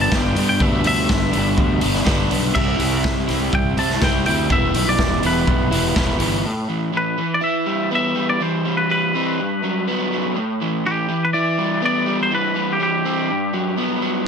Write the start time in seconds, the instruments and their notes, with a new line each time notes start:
Already playing: overdriven electric guitar G2 G3 B3 D4
0.01 clean electric guitar A5
0.11 fingered electric bass G1, overdriven electric guitar D3 G3 B3 D4, clean electric guitar G5, kick, snare
0.35 fingered electric bass G2, overdriven electric guitar G3 B3 D4, open hi-hat
0.49 clean electric guitar G5
0.60 fingered electric bass D2, overdriven electric guitar G2 D3 G3 B3 D4, clean electric guitar E5, kick
0.84 fingered electric bass D2, clean electric guitar E5, open hi-hat
1.09 fingered electric bass G1, kick, snare
1.32 fingered electric bass G1, overdriven electric guitar G3 B3 D4, open hi-hat
1.58 fingered electric bass D2, kick
1.81 fingered electric bass G1, overdriven electric guitar G3 B3 D4, open hi-hat
1.94 snare
2.05 fingered electric bass G1, overdriven electric guitar D3 G3 B3 D4, kick, snare
2.30 fingered electric bass B1, overdriven electric guitar G3 B3 D4, open hi-hat
2.55 fingered electric bass C2, overdriven electric guitar C3 G3 C4 E4, clean electric guitar E5, kick, crash
2.79 fingered electric bass C2, open hi-hat
3.04 fingered electric bass C3, kick, snare
3.28 fingered electric bass C2, overdriven electric guitar G3 C4 E4, snare, open hi-hat
3.53 fingered electric bass C2, clean electric guitar G5, kick
3.77 fingered electric bass C2, overdriven electric guitar G3 C4 E4, clean electric guitar A5, open hi-hat
3.90 snare
4.02 fingered electric bass C2, overdriven electric guitar C3 G3 C4 E4, clean electric guitar G5, kick, snare
4.26 fingered electric bass D2, overdriven electric guitar G3 C4 E4, clean electric guitar G5, open hi-hat
4.50 fingered electric bass E1, overdriven electric guitar E3 G3 B3 E4, clean electric guitar E5, kick
4.74 fingered electric bass B1, open hi-hat
4.89 clean electric guitar D5
4.98 fingered electric bass E1, kick, snare
5.22 fingered electric bass E1, overdriven electric guitar G3 B3 E4, open hi-hat
5.26 clean electric guitar B4
5.47 fingered electric bass B1, kick
5.70 fingered electric bass E1, overdriven electric guitar G3 B3 E4, open hi-hat
5.95 fingered electric bass E1, overdriven electric guitar E3 G3 B3 E4, kick, snare
6.19 fingered electric bass G1, overdriven electric guitar G3 B3 E4, open hi-hat
6.46 overdriven electric guitar A2
6.69 overdriven electric guitar E3
6.93 overdriven electric guitar E3, clean electric guitar B4
7.18 overdriven electric guitar E3
7.34 clean electric guitar D5
7.41 overdriven electric guitar E4, clean electric guitar E5
7.66 overdriven electric guitar G3
7.91 overdriven electric guitar B3, clean electric guitar E5
8.16 overdriven electric guitar G3
8.30 clean electric guitar D5
8.41 overdriven electric guitar E3, clean electric guitar C5
8.65 overdriven electric guitar G3
8.77 clean electric guitar B4
8.90 overdriven electric guitar G3, clean electric guitar B4
9.15 overdriven electric guitar C4
9.39 overdriven electric guitar G2
9.63 overdriven electric guitar F#3
9.87 overdriven electric guitar B3
10.12 overdriven electric guitar F#3
10.36 overdriven electric guitar A2
10.61 overdriven electric guitar E3
10.86 overdriven electric guitar E3, clean electric guitar G4
11.08 overdriven electric guitar E3
11.25 clean electric guitar B4
11.33 overdriven electric guitar E4, clean electric guitar D5
11.58 overdriven electric guitar G3
11.82 overdriven electric guitar B3, clean electric guitar D5
12.06 overdriven electric guitar G3
12.23 clean electric guitar C5
12.32 overdriven electric guitar E3, clean electric guitar B4
12.56 overdriven electric guitar G3
12.73 clean electric guitar G4
12.80 overdriven electric guitar G3, clean electric guitar G4
13.05 overdriven electric guitar C4
13.30 overdriven electric guitar G2
13.54 overdriven electric guitar F#3
13.77 overdriven electric guitar B3
14.02 overdriven electric guitar F#3